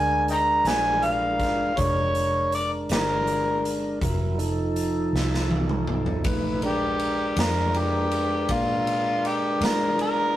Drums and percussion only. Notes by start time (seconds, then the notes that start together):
0.28 closed hi-hat
0.65 snare, closed hi-hat
1.02 closed hi-hat
1.39 kick, snare, closed hi-hat
1.77 kick, closed hi-hat
2.15 closed hi-hat
2.52 closed hi-hat
2.89 snare, closed hi-hat
3.27 closed hi-hat
3.65 closed hi-hat
4.01 kick, closed hi-hat
4.39 closed hi-hat
4.76 closed hi-hat
5.16 snare
5.34 snare
5.51 high tom
5.69 mid tom
5.87 mid tom
6.06 floor tom
6.24 kick, ride
6.62 ride
6.99 ride
7.36 snare, ride
7.74 ride
8.11 ride
8.49 kick, ride
8.87 ride
9.25 ride
9.61 snare, ride
9.99 ride